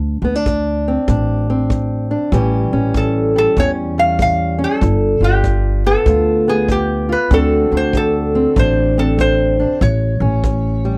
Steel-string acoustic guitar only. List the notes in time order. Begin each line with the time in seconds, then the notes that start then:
Already playing: D2
0.24 B3
0.35 D4
0.47 D2
0.88 C4
1.09 D2 D4
1.50 C4
1.70 D2
2.11 D4
2.32 A2 E3 G3 C#4 G4
2.73 C#4
2.95 A2
3.36 G3
3.57 A2 C#4
3.98 G3
4.19 A2
4.59 C#4
4.81 G2
5.23 F4
5.45 G2
5.86 B3
6.07 G2 F4
6.48 B3
6.69 G2
7.09 F4
7.31 D2 D3 C4 D4 F#4
7.72 D4
7.95 D2
8.35 C4
8.56 D2 D4
8.98 C4
9.18 D2
9.60 D4
9.81 A2
10.21 C#4
10.44 A2
10.85 G3